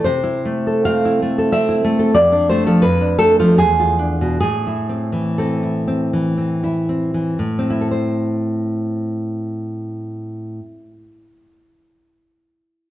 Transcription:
0.04 C3 C5
0.23 E4
0.45 A3
0.67 A4
0.85 C4 F5
1.05 E4
1.22 A3
1.38 A4
1.52 C4 E5
1.69 E4
1.84 A3
1.99 A4
2.14 F2 D5
2.32 D4
2.49 A3 C5
2.66 F3 A4
2.82 F2 B4
3.01 D4
3.19 A3 A4
3.40 F3 F4
3.58 E2 G#4
3.80 F4
3.99 D4
4.21 B2
4.40 A2 G#4
4.67 E4
4.89 C4
5.12 E3
5.38 C4 A4
5.63 E4
5.88 C4
6.13 E3
6.38 C4
6.64 E4
6.89 C4
7.14 E3
7.39 A2
7.59 C4
7.70 E4
7.81 A4
7.91 C5

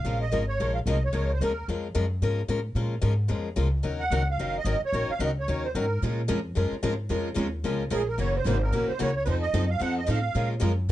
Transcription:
Already playing: F5
0.04 A#1 F3 G#3 C#4 F4 A#4
0.21 D#5
0.32 G#1 F3 G#3 C#4 F4 A#4
0.48 C#5
0.60 A#1 F3 G#3 C#4 F4 A#4
0.74 F5
0.86 C2 F3 G#3 C#4 F4 A#4 D#5
1.04 C#5
1.13 C#2 F3 G#3 C#4 F4 A#4
1.33 C5
1.41 D#2 F3 G#3 C#4 F4 A#4
1.68 F2 F3 G#3 C#4 F4 A#4
1.95 F#2 F3 G#3 C#4 F4 A#4
2.22 G#2 F3 G#3 C#4 F4 A#4
2.48 A2 F3 G#3 C#4 F4 A#4
2.75 A#2 F3 G#3 C#4 F4 A#4
3.02 G#2 F3 G#3 C#4 F4 A#4
3.28 F2 F3 G#3 C#4 F4 A#4
3.56 C#2 F3 G#3 C#4 F4 A#4
3.83 D#2 D#3 F#3 C#4 D#4 A#4
4.00 F#5
4.10 C#2 D#3 F#3 C#4 D#4 A#4
4.30 F5
4.38 F#1 D#3 F#3 C#4 D#4 A#4
4.58 D#5
4.65 G#1 D#3 F#3 C#4 D#4 A#4
4.80 muted upright bass stroke
4.85 C#5
4.93 A#1 D#3 F#3 C#4 D#4 A#4
5.09 F5, muted upright bass stroke
5.19 C#2 D#3 F#3 C#4 D#4 A#4
5.25 D#5
5.40 C#5
5.48 D#2 D#3 F#3 C#4 D#4 A#4
5.65 C5
5.75 G#2 D#3 F#3 C#4 D#4 A#4
5.79 A#4
6.02 A#2 F3 G#3 C#4 F4 A#4
6.28 F2 F3 G#3 C#4 F4 A#4
6.55 F#2 F3 G#3 C#4 F4 A#4
6.72 muted upright bass stroke
6.83 G#2 F3 G#3 C#4 F4 A#4
7.09 F2 F3 G#3 C#4 F4 A#4
7.34 D#2 F3 G#3 C#4 F4 A#4
7.64 C#2 F3 G#3 C#4 F4 A#4
7.90 A#1 F3 G#3 C#4 F4 G#4 A#4
8.08 A#4
8.18 F#1 C#3 E3 F#3 A#3 C#4 E4 F#4 A#4 C#5
8.37 C5
8.44 G#1 C#3 E3 F#3 A#3 C#4 E4 F#4 A#4 C5
8.63 A#4
8.72 A#1 C#3 E3 F#3 A#3 C#4 E4 F#4 A#4
8.88 C5, muted upright bass stroke
8.99 C#2 C#3 E3 F#3 A#3 C#4 E4 F#4 A#4 C#5
9.16 C#5
9.25 F2 F3 C4 D#4 A4 B4 C5
9.42 D#5
9.54 F#2 F3 C4 D#4 A4
9.70 F5
9.79 F2 F3 C4 D#4 A4 F#5
9.98 D#5
10.06 A2 F3 C4 D#4 A4
10.11 F5
10.35 A#2 F3 G#3 C#4 F4 A#4
10.60 F#2 F3 G#3 C#4 F4 A#4
10.89 G#2 F3 G#3

